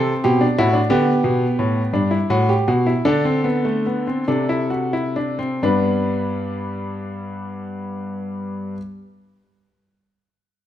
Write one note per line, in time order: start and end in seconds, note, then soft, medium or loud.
0.00 0.12 C3 medium
0.00 0.39 C4 medium
0.00 0.12 A4 medium
0.24 0.45 B2 medium
0.24 0.44 G4 loud
0.41 0.56 D4 medium
0.58 0.78 A2 medium
0.58 0.74 E4 medium
0.58 0.78 F#4 loud
0.73 0.89 D4 medium
0.90 1.11 D3 loud
0.90 1.90 B3 loud
0.90 2.48 G4 medium
1.24 1.45 B2 medium
1.59 1.80 A2 medium
1.93 2.16 G2 medium
1.93 2.11 D4 medium
2.11 2.29 E4 medium
2.30 2.53 A2 loud
2.30 2.48 F#4 loud
2.49 2.67 G4 medium
2.68 2.91 B2 medium
2.68 2.86 F#4 medium
2.87 3.05 E4 medium
3.05 4.23 D3 loud
3.05 3.24 D4 loud
3.05 4.23 A4 loud
3.25 3.44 C4 medium
3.44 3.64 B3 medium
3.65 3.84 A3 medium
3.86 4.06 B3 medium
4.07 4.27 C4 medium
4.28 5.59 C3 medium
4.28 4.48 D4 medium
4.28 5.60 A4 medium
4.49 4.70 E4 medium
4.70 4.92 F#4 medium
4.93 5.15 E4 medium
5.16 5.39 D4 medium
5.39 5.62 C4 medium
5.63 8.74 G2 medium
5.63 8.77 G3 medium
5.63 8.78 B3 medium
5.63 8.75 D4 medium
5.63 8.75 B4 medium